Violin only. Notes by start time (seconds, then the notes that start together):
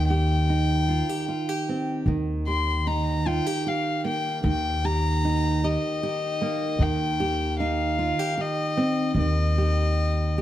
0.10 G5
2.48 C6
2.87 A#5
3.27 G5
3.68 F5
4.07 G5
4.47 G5
4.85 A#5
5.65 D#5
6.83 G5
7.60 F5
8.41 D#5
9.19 D#5